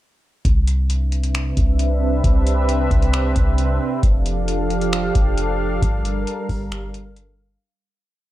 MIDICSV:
0, 0, Header, 1, 4, 480
1, 0, Start_track
1, 0, Key_signature, 0, "major"
1, 0, Tempo, 447761
1, 482, Time_signature, 4, 2, 24, 8
1, 8917, End_track
2, 0, Start_track
2, 0, Title_t, "Analog synth pad"
2, 0, Program_c, 0, 89
2, 482, Note_on_c, 0, 71, 77
2, 483, Note_on_c, 0, 48, 84
2, 483, Note_on_c, 0, 62, 75
2, 483, Note_on_c, 0, 76, 88
2, 484, Note_on_c, 0, 60, 74
2, 4284, Note_off_c, 0, 48, 0
2, 4284, Note_off_c, 0, 62, 0
2, 4284, Note_off_c, 0, 71, 0
2, 4284, Note_off_c, 0, 76, 0
2, 4285, Note_off_c, 0, 60, 0
2, 4321, Note_on_c, 0, 77, 92
2, 4322, Note_on_c, 0, 53, 85
2, 4322, Note_on_c, 0, 62, 76
2, 4322, Note_on_c, 0, 67, 77
2, 4322, Note_on_c, 0, 69, 79
2, 6223, Note_off_c, 0, 53, 0
2, 6223, Note_off_c, 0, 67, 0
2, 6244, Note_on_c, 0, 55, 82
2, 6244, Note_on_c, 0, 70, 74
2, 8123, Note_off_c, 0, 77, 0
2, 8124, Note_off_c, 0, 62, 0
2, 8124, Note_off_c, 0, 69, 0
2, 8144, Note_off_c, 0, 55, 0
2, 8144, Note_off_c, 0, 70, 0
2, 8917, End_track
3, 0, Start_track
3, 0, Title_t, "808-style bass"
3, 0, Program_c, 1, 38
3, 482, Note_on_c, 1, 36, 112
3, 1639, Note_off_c, 1, 36, 0
3, 1684, Note_on_c, 1, 36, 103
3, 2374, Note_off_c, 1, 36, 0
3, 2402, Note_on_c, 1, 36, 106
3, 3093, Note_off_c, 1, 36, 0
3, 3119, Note_on_c, 1, 36, 97
3, 3581, Note_off_c, 1, 36, 0
3, 3601, Note_on_c, 1, 36, 102
3, 4063, Note_off_c, 1, 36, 0
3, 4322, Note_on_c, 1, 29, 112
3, 5479, Note_off_c, 1, 29, 0
3, 5525, Note_on_c, 1, 29, 100
3, 6215, Note_off_c, 1, 29, 0
3, 6242, Note_on_c, 1, 31, 106
3, 6703, Note_off_c, 1, 31, 0
3, 6960, Note_on_c, 1, 31, 104
3, 8118, Note_off_c, 1, 31, 0
3, 8917, End_track
4, 0, Start_track
4, 0, Title_t, "Drums"
4, 482, Note_on_c, 9, 36, 113
4, 483, Note_on_c, 9, 42, 76
4, 589, Note_off_c, 9, 36, 0
4, 590, Note_off_c, 9, 42, 0
4, 723, Note_on_c, 9, 42, 76
4, 830, Note_off_c, 9, 42, 0
4, 962, Note_on_c, 9, 42, 85
4, 1069, Note_off_c, 9, 42, 0
4, 1202, Note_on_c, 9, 42, 58
4, 1309, Note_off_c, 9, 42, 0
4, 1324, Note_on_c, 9, 42, 57
4, 1431, Note_off_c, 9, 42, 0
4, 1443, Note_on_c, 9, 42, 79
4, 1446, Note_on_c, 9, 26, 117
4, 1550, Note_off_c, 9, 42, 0
4, 1553, Note_off_c, 9, 26, 0
4, 1683, Note_on_c, 9, 42, 80
4, 1684, Note_on_c, 9, 36, 97
4, 1790, Note_off_c, 9, 42, 0
4, 1791, Note_off_c, 9, 36, 0
4, 1922, Note_on_c, 9, 42, 80
4, 2029, Note_off_c, 9, 42, 0
4, 2401, Note_on_c, 9, 36, 118
4, 2404, Note_on_c, 9, 42, 80
4, 2509, Note_off_c, 9, 36, 0
4, 2511, Note_off_c, 9, 42, 0
4, 2644, Note_on_c, 9, 42, 76
4, 2751, Note_off_c, 9, 42, 0
4, 2881, Note_on_c, 9, 42, 80
4, 2989, Note_off_c, 9, 42, 0
4, 3120, Note_on_c, 9, 36, 92
4, 3121, Note_on_c, 9, 42, 58
4, 3227, Note_off_c, 9, 36, 0
4, 3229, Note_off_c, 9, 42, 0
4, 3242, Note_on_c, 9, 42, 57
4, 3349, Note_off_c, 9, 42, 0
4, 3360, Note_on_c, 9, 42, 81
4, 3363, Note_on_c, 9, 26, 118
4, 3468, Note_off_c, 9, 42, 0
4, 3471, Note_off_c, 9, 26, 0
4, 3600, Note_on_c, 9, 42, 79
4, 3602, Note_on_c, 9, 36, 101
4, 3707, Note_off_c, 9, 42, 0
4, 3710, Note_off_c, 9, 36, 0
4, 3839, Note_on_c, 9, 42, 76
4, 3947, Note_off_c, 9, 42, 0
4, 4321, Note_on_c, 9, 36, 118
4, 4322, Note_on_c, 9, 42, 76
4, 4429, Note_off_c, 9, 36, 0
4, 4429, Note_off_c, 9, 42, 0
4, 4564, Note_on_c, 9, 42, 76
4, 4671, Note_off_c, 9, 42, 0
4, 4803, Note_on_c, 9, 42, 82
4, 4910, Note_off_c, 9, 42, 0
4, 5043, Note_on_c, 9, 42, 54
4, 5150, Note_off_c, 9, 42, 0
4, 5161, Note_on_c, 9, 42, 57
4, 5268, Note_off_c, 9, 42, 0
4, 5282, Note_on_c, 9, 42, 78
4, 5285, Note_on_c, 9, 26, 119
4, 5389, Note_off_c, 9, 42, 0
4, 5392, Note_off_c, 9, 26, 0
4, 5522, Note_on_c, 9, 42, 77
4, 5524, Note_on_c, 9, 36, 100
4, 5629, Note_off_c, 9, 42, 0
4, 5631, Note_off_c, 9, 36, 0
4, 5762, Note_on_c, 9, 42, 80
4, 5869, Note_off_c, 9, 42, 0
4, 6242, Note_on_c, 9, 36, 121
4, 6245, Note_on_c, 9, 42, 78
4, 6349, Note_off_c, 9, 36, 0
4, 6352, Note_off_c, 9, 42, 0
4, 6486, Note_on_c, 9, 42, 81
4, 6593, Note_off_c, 9, 42, 0
4, 6724, Note_on_c, 9, 42, 81
4, 6831, Note_off_c, 9, 42, 0
4, 6961, Note_on_c, 9, 36, 90
4, 6961, Note_on_c, 9, 46, 54
4, 7068, Note_off_c, 9, 36, 0
4, 7068, Note_off_c, 9, 46, 0
4, 7201, Note_on_c, 9, 42, 76
4, 7204, Note_on_c, 9, 26, 122
4, 7308, Note_off_c, 9, 42, 0
4, 7311, Note_off_c, 9, 26, 0
4, 7442, Note_on_c, 9, 42, 77
4, 7549, Note_off_c, 9, 42, 0
4, 7680, Note_on_c, 9, 42, 80
4, 7788, Note_off_c, 9, 42, 0
4, 8917, End_track
0, 0, End_of_file